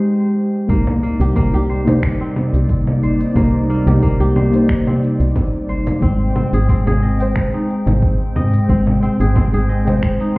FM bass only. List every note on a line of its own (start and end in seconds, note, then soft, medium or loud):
0.69 1.10 C2 loud
1.20 1.41 C2 medium
1.53 2.04 C2 medium
2.02 2.14 G1 loud
2.53 3.04 C2 medium
3.02 3.25 G1 loud
3.36 3.77 C2 medium
3.87 4.07 C2 medium
4.20 4.70 C2 medium
4.69 4.80 G1 loud
5.20 5.70 C2 medium
5.68 5.91 G1 loud
6.02 6.43 G#1 loud
6.53 6.74 G#1 medium
6.86 7.37 G#1 loud
7.36 7.47 D#1 medium
7.87 8.37 G#1 medium
8.35 8.58 G#2 loud
8.69 9.10 G#1 medium
9.20 9.41 G#1 medium
9.53 10.04 G#1 medium
10.02 10.14 D#1 loud